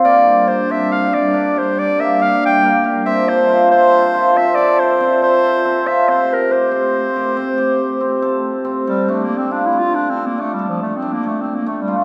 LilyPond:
<<
  \new Staff \with { instrumentName = "Glass harmonica" } { \time 7/4 \key d \minor \tempo 4 = 140 <g d' bes'>1.~ <g d' bes'>4 | <f' e'' a''>1.~ <f' e'' a''>4 | <a g' c''>1.~ <a g' c''>4 | r1. r4 | }
  \new Staff \with { instrumentName = "Clarinet" } { \time 7/4 \key d \minor d''4 c''8 e''8 f''8 d''4 c''8 d''8 e''8 f''8 g''4 r8 | e''8 c''4 c''4. e''8 d''8 c''4 c''4. e''8 | c''8 bes'8 c''1~ c''4 r8 g8 | \tuplet 3/2 { a8 bes8 c'8 d'8 e'8 f'8 d'8 c'8 bes8 a8 g8 f8 a8 c'8 bes8 a8 c'8 bes8 a8 g8 a8 } | }
  \new Staff \with { instrumentName = "Hammered dulcimer" } { \time 7/4 \key d \minor bes4 g'8 d'4 g'8 d'8 g'4 bes8 g'4 bes8 g'8 | c'4 f'8 c'4 f'8 c'8 a'4 c'8 a'4 c'8 f'8 | c'4 g'8 c'4 g'8 c'8 g'4 c'8 a'4 c'8 a'8 | d'4 f'8 a4 a'8 d'8 a'4 d'8 a'4 a8 f'8 | }
>>